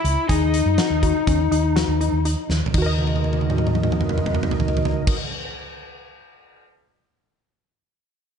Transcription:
Already playing: E4
0.04 C#2, closed hi-hat
0.28 D#2 D#4 G#4, kick, closed hi-hat
0.54 closed hi-hat
0.66 F#2
0.78 F#4, snare, closed hi-hat
0.90 D#2
1.03 F#4, kick, closed hi-hat
1.27 D#2 C#4, kick, closed hi-hat
1.51 D#2 D#4, closed hi-hat
1.76 F#4, snare, closed hi-hat
1.88 D#2
2.01 D#4, closed hi-hat
2.12 D#2
2.25 D#4, closed hi-hat
2.49 D#2, snare
2.66 floor tom
2.74 D#2 D#4 F#4, kick, crash
2.82 A#4
2.86 D#5
2.99 high tom
3.07 high tom
3.16 high tom
3.24 high tom
3.33 high tom
3.41 high tom
3.50 mid tom
3.58 mid tom
3.67 mid tom
3.75 mid tom
3.83 mid tom
3.92 mid tom
4.01 mid tom
4.09 mid tom
4.18 mid tom
4.26 mid tom
4.35 mid tom
4.43 mid tom
4.51 floor tom
4.60 floor tom
4.68 floor tom
4.77 floor tom
4.85 floor tom
5.07 kick, crash

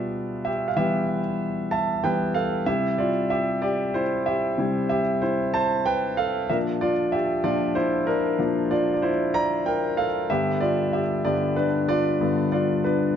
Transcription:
Already playing: B2 G3 B3 F4 G4 B4 D5 E5 F5
0.45 G4 E5
0.68 F5
0.76 E3 G3 B3 G4 E5
1.71 E5 A5
2.03 E3 G3 B3 B4 G5
2.34 A4 F5
2.66 C3 G3 E4 G4 E5
2.98 F4 D5
3.30 G4 E5
3.62 G4 D5
3.94 E4 C5
4.26 G4 E5
4.58 C3 G3 E4
4.89 G4 E5
5.22 E4 C5
5.54 C5 A5
5.86 B4 G5
6.17 A4 F5
6.49 A#2 F3 D4 A#4 E5
6.81 F4 D5
7.12 G4 E5
7.44 A#2 F3 D4 F4 D5
7.75 E4 C5
8.07 D4 A#4
8.38 A#2 F3 D4
8.71 F4 D5
8.94 D5
9.02 E4 C5
9.34 D5 A#5
9.66 A#4 G5
9.97 A4 F5
10.30 G2 D3 B3 G4 E5
10.61 F4 D5
10.93 G4 E5
11.24 G2 D3 B3 G4 D5
11.56 D4 B4
11.89 F4 D5
12.20 G2 D3 B3
12.52 F4 D5
12.84 D4 B4

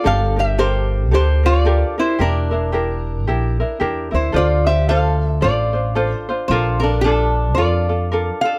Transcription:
0.04 G1 D4 G4 A4 A#4 F5
0.36 D4 G4 A#4 E5
0.58 D4 G4 A4 A#4 C5
1.11 D2 D4 G4 A4 A#4 C5
1.43 D4 F4 G4 A#4 D5
1.65 D4 G4 A4 A#4
1.98 D4 E4 G4 A#4 C5
2.19 E1 D4 E4 G4 A#4
2.51 D4 E4 A#4
2.72 D4 E4 G4 A#4
3.26 A#1 D4 E4 G4 A#4
3.60 D4 E4 A#4
3.80 E2 D4 E4 G4 A#4
4.11 D2 D4 E4 A#4 C5
4.16 E4
4.32 D2 D4 F4 A4 C5 D5
4.38 F4
4.66 D4 F4 G4 C5 E5
4.88 D4 F4 A4 C5 F5
5.25 E5
5.41 A1 D4 F4 A4 C5 D5
5.73 D4 F4 C5
5.95 D4 F4 A4 C5
6.14 C5
6.29 D4 F4 C5
6.48 A#1 D4 F4 A#4 C5
6.52 F4 A4
6.80 D4 F4 A4 A#4
6.84 D4
7.01 D4 F4 A4
7.06 A4
7.55 D4 F4 A#4 D5
7.59 F2 A4
7.89 D4 F4 A4
8.12 D4 F4 A4 A#4
8.41 F4 A4 F5
8.45 D4 A4

